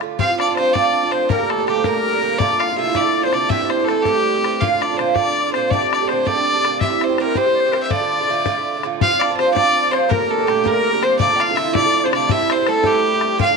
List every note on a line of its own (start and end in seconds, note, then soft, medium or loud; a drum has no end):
0.00 0.19 D3 soft
0.00 0.19 A3 soft
0.00 0.18 F4 medium
0.00 bodhran medium
0.19 0.29 G2 medium
0.19 0.29 F3 medium
0.19 0.28 C4 medium
0.19 2.59 F4 medium
0.19 0.26 F4 loud
0.19 0.38 F5 medium
0.19 bodhran medium
0.27 0.48 F3 soft
0.27 0.48 C4 medium
0.27 0.47 F4 medium
0.38 0.74 D4 medium
0.38 0.58 D5 medium
0.38 0.55 D5 medium
0.38 bodhran medium
0.48 0.57 F3 soft
0.48 0.57 C4 medium
0.48 0.57 F4 medium
0.56 0.73 G2 medium
0.56 0.73 F3 medium
0.56 1.15 C4 medium
0.56 0.74 C4 medium
0.56 0.75 F4 medium
0.56 0.75 C5 loud
0.56 0.75 C5 medium
0.56 bodhran medium
0.73 0.84 G2 medium
0.73 0.84 F3 medium
0.73 0.84 C4 medium
0.73 0.89 D4 medium
0.73 0.83 F4 medium
0.73 1.12 D5 medium
0.73 1.13 D5 loud
0.73 bodhran medium
0.84 1.04 F3 soft
0.84 1.04 C4 soft
0.84 1.02 F4 medium
0.90 1.02 D4 medium
1.03 1.11 F3 soft
1.03 1.13 C4 medium
1.03 2.40 D4 medium
1.03 1.12 F4 medium
1.11 1.29 G2 medium
1.11 1.30 F3 medium
1.11 1.30 C4 medium
1.11 3.26 C4 medium
1.11 1.31 F4 medium
1.11 1.31 C5 medium
1.11 1.28 C5 medium
1.11 bodhran medium
1.29 1.39 A#2 medium
1.29 1.40 D3 medium
1.29 1.59 A#3 medium
1.29 1.39 D4 loud
1.29 1.37 G4 loud
1.29 1.51 A#4 medium
1.29 bodhran medium
1.38 1.60 D3 soft
1.38 1.59 D4 soft
1.38 1.57 G4 soft
1.49 1.92 A3 medium
1.49 1.68 A4 medium
1.49 1.67 A4 medium
1.49 bodhran medium
1.58 1.67 D3 soft
1.58 1.68 D4 medium
1.58 1.67 G4 medium
1.67 1.84 A#2 medium
1.67 1.85 D3 medium
1.67 2.45 G3 medium
1.67 1.85 D4 medium
1.67 1.79 G4 medium
1.67 1.87 G4 medium
1.67 1.86 G4 medium
1.67 bodhran medium
1.77 1.85 C5 medium
1.83 1.95 A#2 medium
1.83 1.96 D3 medium
1.83 3.93 A#3 loud
1.83 1.95 D4 medium
1.83 2.37 A#4 medium
1.83 2.40 A#4 loud
1.83 bodhran medium
1.87 1.93 G4 medium
1.94 2.15 D3 soft
1.94 2.13 D4 soft
1.94 2.12 G4 medium
2.13 2.21 D3 soft
2.13 2.22 D4 soft
2.13 2.22 G4 soft
2.22 2.39 A#2 medium
2.22 2.39 D3 medium
2.22 2.40 D4 medium
2.22 2.41 G4 medium
2.37 2.50 C3 medium
2.37 2.50 D3 medium
2.37 2.50 A3 medium
2.37 2.95 D4 medium
2.37 2.61 D5 medium
2.37 bodhran medium
2.41 2.48 F4 loud
2.49 2.70 D3 soft
2.49 2.69 A3 soft
2.49 2.67 F4 medium
2.59 2.83 F4 medium
2.59 2.77 F5 medium
2.59 2.97 F5 medium
2.59 bodhran medium
2.69 2.76 D3 soft
2.69 2.77 A3 soft
2.69 2.77 F4 medium
2.76 2.92 C3 medium
2.76 2.93 D3 medium
2.76 2.93 A3 medium
2.76 3.51 E4 medium
2.76 2.94 F4 medium
2.76 2.98 E5 medium
2.93 3.04 C3 medium
2.93 3.05 D3 medium
2.93 3.03 A3 medium
2.93 3.34 D4 medium
2.93 3.02 F4 medium
2.93 3.24 D5 loud
2.93 3.01 E5 medium
2.93 bodhran medium
3.00 3.22 A3 soft
3.00 3.20 F4 medium
3.00 3.25 D5 medium
3.06 3.24 D3 soft
3.21 3.32 D3 medium
3.21 3.33 A3 medium
3.21 3.32 F4 medium
3.21 3.33 C5 medium
3.21 3.35 C5 medium
3.27 3.70 C4 medium
3.32 3.49 C3 medium
3.32 3.49 D3 medium
3.32 3.51 A3 medium
3.32 4.80 D4 medium
3.32 3.51 F4 medium
3.32 3.51 D5 loud
3.32 3.51 D5 medium
3.32 bodhran medium
3.49 3.60 G2 medium
3.49 3.60 E3 medium
3.49 3.60 C4 medium
3.49 4.67 E4 medium
3.49 3.59 G4 loud
3.49 3.70 E5 loud
3.49 3.66 E5 medium
3.49 bodhran medium
3.60 3.80 E3 medium
3.60 3.80 C4 soft
3.60 3.79 G4 medium
3.65 3.71 D5 medium
3.69 4.99 C4 medium
3.69 3.86 C5 medium
3.69 3.89 C5 medium
3.69 bodhran medium
3.80 3.88 E3 soft
3.80 3.89 C4 medium
3.80 3.88 G4 medium
3.84 4.04 G2 medium
3.84 8.30 A3 medium
3.84 4.04 A4 medium
3.84 4.08 A4 medium
3.89 4.04 E3 medium
3.89 4.05 C4 medium
3.89 4.05 G4 medium
3.89 bodhran medium
4.03 4.16 G2 medium
4.03 4.16 E3 medium
4.03 4.66 G3 medium
4.03 4.16 C4 medium
4.03 4.62 G4 loud
4.03 4.37 G4 medium
4.03 4.15 G4 medium
4.03 bodhran medium
4.16 4.35 E3 soft
4.16 4.34 C4 soft
4.16 4.33 G4 soft
4.34 4.43 E3 soft
4.34 4.43 C4 soft
4.34 4.43 G4 soft
4.44 4.60 G2 medium
4.44 4.61 E3 medium
4.44 4.62 C4 medium
4.44 4.62 G4 medium
4.44 bodhran medium
4.60 4.71 A#2 medium
4.60 4.71 D3 medium
4.60 4.72 D4 loud
4.60 6.88 F4 medium
4.60 4.70 F4 medium
4.60 4.83 F5 medium
4.60 bodhran medium
4.72 4.92 D3 soft
4.72 4.90 D4 soft
4.72 4.88 F4 medium
4.81 5.17 D4 medium
4.81 5.00 D5 medium
4.81 4.98 D5 medium
4.81 bodhran medium
4.90 4.98 D3 soft
4.90 4.99 D4 medium
4.90 4.98 F4 medium
4.97 5.14 A#2 medium
4.97 5.15 D3 medium
4.97 5.53 C4 medium
4.97 5.16 D4 medium
4.97 5.17 F4 medium
4.97 5.16 C5 medium
4.97 5.10 C5 medium
4.97 bodhran medium
5.09 5.17 E5 medium
5.15 5.26 A#2 medium
5.15 5.26 D3 medium
5.15 5.70 D4 medium
5.15 5.27 D4 medium
5.15 5.25 F4 medium
5.15 5.52 D5 loud
5.15 5.54 D5 medium
5.15 bodhran medium
5.27 5.47 D3 soft
5.27 5.46 D4 soft
5.27 5.45 F4 soft
5.46 5.54 D3 soft
5.46 5.55 D4 soft
5.46 5.54 F4 medium
5.53 5.71 A#2 medium
5.53 5.72 D3 medium
5.53 6.10 C4 medium
5.53 5.72 D4 medium
5.53 5.71 C5 medium
5.53 5.72 C5 medium
5.53 bodhran medium
5.57 5.73 F4 medium
5.69 5.82 A#2 medium
5.69 5.82 D3 medium
5.69 5.82 A3 medium
5.69 5.92 D4 medium
5.69 6.08 D5 loud
5.69 5.91 D5 medium
5.69 bodhran medium
5.74 5.81 G4 loud
5.83 6.02 D3 soft
5.83 6.01 A3 soft
5.83 5.99 G4 medium
5.92 6.26 D4 medium
5.92 6.09 D5 medium
5.92 bodhran medium
6.00 6.09 D3 soft
6.00 6.10 A3 medium
6.00 6.09 G4 soft
6.08 6.24 A#2 medium
6.08 6.25 D3 medium
6.08 6.25 A3 medium
6.08 7.01 C4 medium
6.08 6.28 C5 medium
6.08 bodhran medium
6.13 6.26 G4 medium
6.25 6.36 A#2 medium
6.25 6.36 D3 medium
6.25 6.36 A3 medium
6.25 6.39 D4 loud
6.25 6.35 G4 medium
6.25 6.82 D5 medium
6.25 6.80 D5 loud
6.25 bodhran medium
6.36 6.57 D3 soft
6.36 6.55 A3 medium
6.36 6.50 D4 medium
6.36 6.54 G4 medium
6.51 6.63 D4 medium
6.55 6.63 D3 soft
6.55 6.64 A3 medium
6.55 6.64 G4 soft
6.63 6.81 A#2 medium
6.63 6.81 D3 medium
6.63 6.82 A3 medium
6.63 7.91 D4 medium
6.63 6.82 G4 medium
6.63 bodhran medium
6.80 6.92 G2 medium
6.80 6.92 E3 medium
6.80 6.90 C4 loud
6.80 9.06 E4 medium
6.80 6.89 G4 medium
6.80 7.01 E5 medium
6.80 7.05 E5 medium
6.80 bodhran medium
6.90 7.11 E3 soft
6.90 7.10 C4 medium
6.90 7.08 G4 medium
7.01 7.37 C4 medium
7.01 7.22 C5 medium
7.01 bodhran medium
7.09 7.19 E3 soft
7.09 7.19 C4 medium
7.09 7.18 G4 medium
7.18 7.35 G2 medium
7.18 7.35 E3 medium
7.18 7.36 C4 medium
7.18 7.36 G4 medium
7.18 7.35 A#4 medium
7.18 7.39 A#4 medium
7.18 bodhran medium
7.35 7.46 G2 medium
7.35 7.46 E3 medium
7.35 7.47 C4 medium
7.35 7.45 G4 medium
7.35 7.82 C5 loud
7.35 7.56 C5 medium
7.35 bodhran medium
7.46 7.67 E3 soft
7.46 7.65 C4 soft
7.46 7.64 G4 medium
7.55 7.60 D5 medium
7.59 7.73 C5 medium
7.65 7.72 E3 soft
7.65 7.74 C4 soft
7.65 7.74 G4 medium
7.72 7.88 G2 medium
7.72 7.90 E3 medium
7.72 7.90 C4 medium
7.72 7.90 G4 medium
7.72 7.77 A#4 medium
7.72 bodhran medium
7.76 7.94 C5 medium
7.83 7.92 E5 medium
7.89 8.00 A2 medium
7.89 8.01 D3 medium
7.89 8.00 A3 medium
7.89 9.21 D4 medium
7.89 7.98 F4 medium
7.89 8.84 D5 medium
7.89 8.71 D5 medium
7.89 bodhran medium
7.99 8.21 D3 soft
7.99 8.19 A3 medium
7.99 8.18 F4 medium
8.19 8.28 D3 medium
8.19 8.29 A3 medium
8.19 8.28 F4 medium
8.28 8.44 A2 medium
8.28 8.45 D3 medium
8.28 8.45 A3 medium
8.28 8.46 F4 medium
8.45 8.56 A2 medium
8.45 8.57 D3 medium
8.45 8.56 A3 medium
8.45 8.54 F4 medium
8.45 bodhran medium
8.55 8.77 D3 soft
8.55 8.76 A3 medium
8.55 8.74 F4 medium
8.75 8.83 D3 medium
8.75 8.84 A3 medium
8.75 8.84 F4 soft
8.83 9.01 A2 medium
8.83 9.01 D3 medium
8.83 9.02 A3 medium
8.83 9.02 F4 medium
8.83 bodhran soft
9.00 9.12 G2 medium
9.00 9.12 F3 medium
9.00 9.12 C4 medium
9.00 11.40 F4 medium
9.00 9.11 F4 medium
9.00 9.22 F5 loud
9.00 9.21 F5 loud
9.00 bodhran loud
9.12 9.31 F3 soft
9.12 9.29 C4 medium
9.12 9.27 F4 medium
9.20 9.56 D4 medium
9.20 9.36 D5 medium
9.20 9.40 D5 medium
9.20 bodhran medium
9.29 9.38 F3 soft
9.29 9.39 C4 soft
9.29 9.38 F4 medium
9.37 9.52 G2 medium
9.37 9.54 F3 medium
9.37 9.91 C4 medium
9.37 9.54 C4 medium
9.37 9.53 C5 loud
9.37 9.57 C5 medium
9.37 bodhran medium
9.41 9.54 F4 medium
9.54 9.65 G2 medium
9.54 9.66 F3 medium
9.54 9.65 C4 medium
9.54 11.21 D4 loud
9.54 9.63 F4 medium
9.54 9.93 D5 loud
9.54 9.95 D5 medium
9.54 bodhran medium
9.65 9.85 F3 soft
9.65 9.84 C4 medium
9.65 9.82 F4 soft
9.83 9.91 F3 soft
9.83 9.92 C4 medium
9.83 9.92 F4 medium
9.91 10.09 G2 medium
9.91 10.09 F3 medium
9.91 11.02 C4 medium
9.91 10.10 C4 medium
9.91 10.11 F4 medium
9.91 10.11 C5 loud
9.91 10.12 C5 medium
9.91 bodhran medium
10.08 10.20 A#2 loud
10.08 10.21 D3 medium
10.08 10.36 A#3 medium
10.08 10.21 D4 medium
10.08 10.19 G4 loud
10.08 10.32 A#4 medium
10.08 10.50 A#4 medium
10.08 bodhran medium
10.20 10.41 D3 soft
10.20 10.39 D4 soft
10.20 10.37 G4 soft
10.30 10.70 A3 medium
10.30 10.49 A4 medium
10.39 10.47 D3 soft
10.39 10.48 D4 medium
10.39 10.48 G4 medium
10.47 10.63 A#2 medium
10.47 10.64 D3 medium
10.47 11.26 G3 medium
10.47 10.64 D4 medium
10.47 10.69 G4 medium
10.47 10.65 G4 medium
10.47 bodhran medium
10.64 10.75 A#2 medium
10.64 10.75 D3 medium
10.64 12.74 A#3 medium
10.64 10.74 D4 medium
10.64 10.72 G4 medium
10.64 11.05 A#4 medium
10.64 11.05 A#4 loud
10.64 bodhran medium
10.73 10.94 D3 soft
10.73 10.92 D4 soft
10.73 10.92 G4 medium
10.93 11.01 D3 soft
10.93 11.02 D4 soft
10.93 11.03 G4 medium
11.01 11.19 A#2 medium
11.01 11.18 D3 soft
11.01 12.04 C4 medium
11.01 11.20 D4 medium
11.01 11.20 G4 medium
11.01 11.18 C5 loud
11.01 11.19 C5 medium
11.01 bodhran medium
11.19 11.30 C3 medium
11.19 11.30 D3 loud
11.19 11.31 A3 loud
11.19 11.74 D4 medium
11.19 11.29 F4 loud
11.19 11.42 D5 loud
11.19 11.37 D5 medium
11.19 bodhran medium
11.30 11.51 D3 soft
11.30 11.49 A3 medium
11.30 11.48 F4 medium
11.36 11.58 F5 medium
11.36 11.41 G5 medium
11.40 11.63 F4 loud
11.40 11.57 F5 medium
11.40 bodhran medium
11.49 11.56 D3 soft
11.49 11.58 A3 medium
11.49 11.58 F4 soft
11.55 11.73 C3 medium
11.55 11.73 D3 medium
11.55 11.74 A3 medium
11.55 12.28 E4 medium
11.55 11.74 E5 loud
11.55 11.74 E5 medium
11.55 bodhran medium
11.60 11.74 F4 medium
11.74 11.85 C3 medium
11.74 11.85 D3 medium
11.74 11.84 A3 medium
11.74 12.11 D4 medium
11.74 11.81 F4 medium
11.74 12.07 D5 loud
11.74 11.80 E5 medium
11.74 bodhran medium
11.79 12.02 F4 medium
11.79 12.05 D5 medium
11.85 12.04 D3 soft
11.85 12.04 A3 medium
12.03 12.12 D3 soft
12.03 12.12 A3 medium
12.03 12.50 C4 medium
12.03 12.13 F4 medium
12.03 12.12 C5 medium
12.03 12.13 C5 medium
12.10 12.29 C3 medium
12.10 12.30 D3 medium
12.10 12.30 A3 medium
12.10 13.57 D4 medium
12.10 12.28 D5 medium
12.10 12.33 D5 medium
12.10 bodhran medium
12.15 12.31 F4 medium
12.29 12.40 G2 medium
12.29 12.41 G3 loud
12.29 12.41 C4 medium
12.29 13.45 E4 medium
12.29 12.40 E4 loud
12.29 12.51 E5 loud
12.29 12.54 E5 loud
12.29 bodhran loud
12.41 12.60 G3 soft
12.41 12.59 C4 soft
12.41 12.57 E4 medium
12.50 13.57 C4 medium
12.50 12.69 C5 medium
12.50 12.70 C5 medium
12.50 bodhran medium
12.58 12.67 G3 soft
12.58 12.68 C4 medium
12.58 12.67 E4 medium
12.67 12.84 G2 medium
12.67 12.84 G3 medium
12.67 13.57 A3 medium
12.67 12.85 C4 medium
12.67 12.85 E4 medium
12.67 12.86 A4 medium
12.67 12.89 A4 loud
12.67 bodhran medium
12.84 12.95 G2 medium
12.84 13.45 G3 medium
12.84 12.95 G3 medium
12.84 12.95 C4 medium
12.84 12.93 E4 medium
12.84 13.39 G4 medium
12.84 13.41 G4 loud
12.84 bodhran medium
12.94 13.15 G3 soft
12.94 13.14 C4 medium
12.94 13.13 E4 medium
13.14 13.21 G3 soft
13.14 13.22 C4 medium
13.14 13.22 E4 soft
13.21 13.38 G2 medium
13.21 13.39 G3 medium
13.21 13.39 C4 medium
13.21 13.40 E4 medium
13.21 bodhran medium
13.39 13.49 A#2 medium
13.39 13.50 D3 medium
13.39 13.48 D4 medium
13.39 13.57 F4 medium
13.39 13.47 F4 loud
13.39 13.57 F5 medium
13.39 13.45 G5 medium
13.39 bodhran medium
13.44 13.57 F5 loud
13.48 13.57 D3 soft
13.48 13.57 D4 medium
13.48 13.57 F4 medium